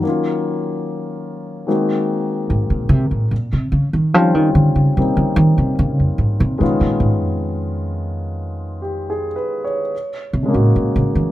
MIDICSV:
0, 0, Header, 1, 3, 480
1, 0, Start_track
1, 0, Tempo, 825309
1, 13, Time_signature, 4, 2, 24, 8
1, 6580, End_track
2, 0, Start_track
2, 0, Title_t, "Grand piano"
2, 0, Program_c, 0, 0
2, 0, Control_c, 0, 64, 127
2, 0, Note_on_c, 0, 51, 38
2, 0, Note_on_c, 0, 54, 35
2, 18, Note_on_c, 0, 58, 35
2, 20, Control_c, 0, 64, 0
2, 32, Note_on_c, 0, 61, 33
2, 50, Note_on_c, 0, 65, 44
2, 124, Control_c, 0, 64, 127
2, 956, Note_off_c, 0, 51, 0
2, 962, Note_off_c, 0, 54, 0
2, 969, Note_on_c, 0, 51, 40
2, 970, Note_off_c, 0, 58, 0
2, 976, Note_on_c, 0, 56, 37
2, 977, Control_c, 0, 64, 0
2, 979, Note_off_c, 0, 61, 0
2, 979, Note_on_c, 0, 58, 36
2, 980, Note_on_c, 0, 60, 38
2, 980, Note_on_c, 0, 66, 44
2, 988, Note_off_c, 0, 65, 0
2, 1088, Control_c, 0, 64, 127
2, 1925, Note_off_c, 0, 51, 0
2, 1929, Note_off_c, 0, 56, 0
2, 1930, Note_off_c, 0, 58, 0
2, 1931, Note_off_c, 0, 60, 0
2, 1931, Note_off_c, 0, 66, 0
2, 1933, Control_c, 0, 64, 0
2, 2033, Control_c, 0, 64, 127
2, 2406, Note_on_c, 0, 51, 39
2, 2408, Note_on_c, 0, 55, 36
2, 2414, Note_on_c, 0, 60, 38
2, 2414, Note_on_c, 0, 65, 42
2, 2416, Note_on_c, 0, 61, 38
2, 2880, Note_off_c, 0, 55, 0
2, 2889, Note_on_c, 0, 55, 33
2, 2893, Note_off_c, 0, 60, 0
2, 2895, Note_on_c, 0, 58, 28
2, 2901, Note_on_c, 0, 60, 30
2, 2905, Note_on_c, 0, 63, 36
2, 3819, Note_off_c, 0, 51, 0
2, 3828, Note_on_c, 0, 51, 44
2, 3832, Note_on_c, 0, 56, 44
2, 3840, Note_off_c, 0, 61, 0
2, 3842, Note_on_c, 0, 59, 40
2, 3846, Note_off_c, 0, 55, 0
2, 3846, Note_off_c, 0, 65, 0
2, 3848, Note_on_c, 0, 61, 38
2, 3849, Note_off_c, 0, 58, 0
2, 3851, Control_c, 0, 64, 0
2, 3852, Note_off_c, 0, 60, 0
2, 3854, Note_off_c, 0, 63, 0
2, 3855, Note_on_c, 0, 65, 49
2, 3943, Control_c, 0, 64, 127
2, 5130, Note_on_c, 0, 67, 41
2, 5291, Note_on_c, 0, 68, 42
2, 5382, Note_off_c, 0, 67, 0
2, 5443, Note_on_c, 0, 71, 49
2, 5599, Note_off_c, 0, 68, 0
2, 5610, Note_on_c, 0, 73, 47
2, 5700, Note_off_c, 0, 71, 0
2, 5765, Note_off_c, 0, 51, 0
2, 5767, Note_off_c, 0, 56, 0
2, 5772, Note_off_c, 0, 59, 0
2, 5775, Note_off_c, 0, 61, 0
2, 5779, Note_off_c, 0, 65, 0
2, 5781, Control_c, 0, 64, 0
2, 5863, Note_off_c, 0, 73, 0
2, 5880, Control_c, 0, 64, 127
2, 6065, Note_on_c, 0, 49, 38
2, 6081, Note_on_c, 0, 56, 34
2, 6096, Note_on_c, 0, 58, 38
2, 6113, Note_on_c, 0, 61, 36
2, 6126, Note_on_c, 0, 66, 44
2, 6561, Note_off_c, 0, 58, 0
2, 6580, Note_off_c, 0, 49, 0
2, 6580, Note_off_c, 0, 56, 0
2, 6580, Note_off_c, 0, 61, 0
2, 6580, Note_off_c, 0, 66, 0
2, 6580, End_track
3, 0, Start_track
3, 0, Title_t, "Upright bass"
3, 0, Program_c, 1, 32
3, 1453, Note_on_c, 1, 44, 69
3, 1568, Note_off_c, 1, 44, 0
3, 1571, Note_on_c, 1, 46, 63
3, 1678, Note_off_c, 1, 46, 0
3, 1682, Note_on_c, 1, 48, 86
3, 1800, Note_off_c, 1, 48, 0
3, 1809, Note_on_c, 1, 45, 61
3, 1902, Note_off_c, 1, 45, 0
3, 1927, Note_on_c, 1, 46, 64
3, 2048, Note_off_c, 1, 46, 0
3, 2051, Note_on_c, 1, 48, 65
3, 2159, Note_off_c, 1, 48, 0
3, 2163, Note_on_c, 1, 49, 71
3, 2280, Note_off_c, 1, 49, 0
3, 2287, Note_on_c, 1, 51, 68
3, 2409, Note_off_c, 1, 51, 0
3, 2409, Note_on_c, 1, 53, 86
3, 2527, Note_off_c, 1, 53, 0
3, 2527, Note_on_c, 1, 51, 77
3, 2642, Note_off_c, 1, 51, 0
3, 2646, Note_on_c, 1, 50, 81
3, 2762, Note_off_c, 1, 50, 0
3, 2766, Note_on_c, 1, 49, 69
3, 2860, Note_off_c, 1, 49, 0
3, 2891, Note_on_c, 1, 48, 74
3, 3002, Note_off_c, 1, 48, 0
3, 3006, Note_on_c, 1, 49, 79
3, 3115, Note_off_c, 1, 49, 0
3, 3118, Note_on_c, 1, 51, 96
3, 3238, Note_off_c, 1, 51, 0
3, 3244, Note_on_c, 1, 48, 74
3, 3339, Note_off_c, 1, 48, 0
3, 3366, Note_on_c, 1, 49, 87
3, 3483, Note_off_c, 1, 49, 0
3, 3486, Note_on_c, 1, 41, 49
3, 3591, Note_off_c, 1, 41, 0
3, 3595, Note_on_c, 1, 44, 67
3, 3716, Note_off_c, 1, 44, 0
3, 3724, Note_on_c, 1, 48, 79
3, 3819, Note_off_c, 1, 48, 0
3, 3842, Note_on_c, 1, 47, 62
3, 3955, Note_off_c, 1, 47, 0
3, 3959, Note_on_c, 1, 46, 62
3, 4067, Note_off_c, 1, 46, 0
3, 4071, Note_on_c, 1, 44, 70
3, 4201, Note_off_c, 1, 44, 0
3, 4201, Note_on_c, 1, 41, 60
3, 5432, Note_off_c, 1, 41, 0
3, 6010, Note_on_c, 1, 48, 71
3, 6129, Note_off_c, 1, 48, 0
3, 6132, Note_on_c, 1, 45, 65
3, 6228, Note_off_c, 1, 45, 0
3, 6256, Note_on_c, 1, 46, 67
3, 6369, Note_off_c, 1, 46, 0
3, 6373, Note_on_c, 1, 49, 73
3, 6484, Note_off_c, 1, 49, 0
3, 6487, Note_on_c, 1, 52, 68
3, 6580, Note_off_c, 1, 52, 0
3, 6580, End_track
0, 0, End_of_file